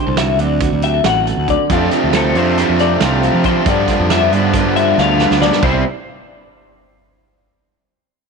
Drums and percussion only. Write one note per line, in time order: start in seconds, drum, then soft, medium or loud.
0.17 snare loud
0.17 closed hi-hat medium
0.39 closed hi-hat medium
0.60 kick loud
0.60 closed hi-hat medium
0.82 closed hi-hat medium
1.04 snare loud
1.04 closed hi-hat medium
1.27 closed hi-hat medium
1.48 kick medium
1.48 closed hi-hat medium
1.70 kick loud
1.70 closed hi-hat loud
1.91 snare soft
1.91 closed hi-hat medium
2.13 snare loud
2.13 closed hi-hat loud
2.35 closed hi-hat medium
2.58 snare soft
2.58 closed hi-hat loud
2.79 snare soft
2.79 closed hi-hat medium
3.00 snare loud
3.00 closed hi-hat loud
3.23 closed hi-hat medium
3.44 kick medium
3.44 closed hi-hat medium
3.66 kick loud
3.66 closed hi-hat medium
3.88 kick medium
3.88 snare soft
3.88 closed hi-hat medium
4.10 snare loud
4.10 closed hi-hat medium
4.33 closed hi-hat medium
4.54 kick loud
4.54 closed hi-hat loud
4.76 closed hi-hat medium
4.98 snare medium
5.19 snare medium
5.31 snare medium
5.42 snare loud
5.52 snare medium
5.63 kick loud
5.63 crash medium